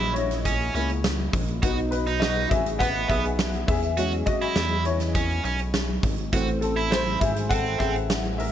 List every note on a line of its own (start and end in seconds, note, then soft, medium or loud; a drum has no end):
0.00 0.70 A#1 loud
0.00 0.12 G#3 medium
0.00 0.12 A#3 medium
0.00 0.12 E4 medium
0.00 0.13 E4 medium
0.00 0.13 F#4 medium
0.00 1.65 A#4 medium
0.00 0.16 D#5 loud
0.00 1.64 E5 medium
0.13 0.74 E4 medium
0.13 1.28 C#5 medium
0.13 closed hi-hat medium
0.31 snare soft
0.31 closed hi-hat medium
0.45 0.73 C#4 medium
0.45 kick medium
0.45 closed hi-hat medium
0.60 closed hi-hat soft
0.75 1.29 C#2 medium
0.75 1.01 G#3 soft
0.75 1.01 A#3 soft
0.75 0.89 C#4 medium
0.75 1.02 E4 medium
0.75 closed hi-hat medium
0.90 closed hi-hat soft
1.04 snare loud
1.33 1.61 A#1 medium
1.33 kick medium
1.33 open hi-hat medium
1.48 closed hi-hat medium
1.62 2.47 B1 loud
1.62 2.02 F#3 medium
1.62 2.02 B3 soft
1.62 1.92 D#4 medium
1.62 1.77 F#4 medium
1.62 kick loud
1.62 closed hi-hat medium
1.78 closed hi-hat soft
1.91 2.20 D#4 medium
1.91 2.22 B4 medium
1.91 closed hi-hat medium
2.07 2.48 D#4 medium
2.07 closed hi-hat soft
2.20 2.49 F#4 medium
2.20 2.51 D#5 medium
2.20 snare loud
2.49 3.06 A1 medium
2.49 2.79 G#4 medium
2.49 2.80 E5 medium
2.49 kick medium
2.49 closed hi-hat medium
2.66 closed hi-hat medium
2.79 3.08 B3 medium
2.79 3.08 B4 medium
2.79 3.10 F#5 medium
2.79 kick medium
2.79 closed hi-hat medium
2.96 closed hi-hat soft
3.08 3.65 B1 medium
3.08 3.24 B3 medium
3.08 3.65 G#4 medium
3.08 3.64 E5 medium
3.08 kick medium
3.08 closed hi-hat medium
3.25 closed hi-hat soft
3.39 snare loud
3.53 closed hi-hat soft
3.68 4.23 E2 loud
3.68 4.24 G#4 medium
3.68 4.23 E5 medium
3.68 kick loud
3.68 open hi-hat medium
3.83 closed hi-hat soft
3.97 6.29 F#3 medium
3.97 6.29 G#3 soft
3.97 6.29 C#4 medium
3.97 4.12 F#4 loud
3.97 closed hi-hat medium
4.12 closed hi-hat soft
4.26 4.83 F#4 medium
4.26 4.87 D#5 medium
4.26 kick medium
4.26 closed hi-hat medium
4.42 4.83 E4 medium
4.42 closed hi-hat soft
4.56 5.41 E2 loud
4.56 snare loud
4.85 6.00 E4 medium
4.85 6.00 C#5 medium
4.85 closed hi-hat medium
5.00 snare soft
5.00 closed hi-hat medium
5.15 5.43 C#4 medium
5.15 kick medium
5.15 closed hi-hat medium
5.29 closed hi-hat soft
5.44 6.00 B1 medium
5.44 5.59 C#4 medium
5.44 closed hi-hat medium
5.59 closed hi-hat soft
5.74 snare loud
6.03 6.31 G#1 medium
6.03 kick loud
6.03 open hi-hat medium
6.18 closed hi-hat soft
6.32 7.17 A1 medium
6.32 6.72 E3 soft
6.32 6.72 A3 medium
6.32 6.62 C4 medium
6.32 6.47 F#4 medium
6.32 kick loud
6.32 closed hi-hat medium
6.47 closed hi-hat soft
6.61 6.90 C4 medium
6.61 6.92 A4 medium
6.61 closed hi-hat medium
6.76 7.18 E4 medium
6.76 closed hi-hat soft
6.91 7.20 E4 medium
6.91 7.22 C5 medium
6.91 snare loud
7.07 closed hi-hat soft
7.20 7.76 G#1 medium
7.20 7.49 G#4 medium
7.20 7.48 E5 medium
7.20 kick medium
7.20 closed hi-hat medium
7.36 closed hi-hat medium
7.49 7.79 C4 medium
7.49 7.79 A4 medium
7.49 7.80 F#5 medium
7.49 kick medium
7.49 closed hi-hat medium
7.66 closed hi-hat soft
7.78 8.52 A1 loud
7.78 7.94 C4 medium
7.78 8.35 G#4 medium
7.78 8.37 E5 medium
7.78 kick medium
7.78 closed hi-hat medium
7.96 closed hi-hat soft
8.10 snare loud
8.38 8.52 A#4 medium
8.38 8.52 E5 medium
8.38 open hi-hat medium